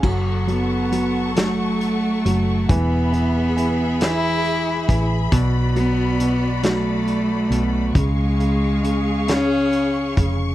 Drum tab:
CC |x-----|------|------|------|
HH |-xxxxx|xxxxxx|xxxxxx|xxxxxx|
SD |---o--|---o--|---o--|---o--|
BD |o-----|o----o|o-----|o----o|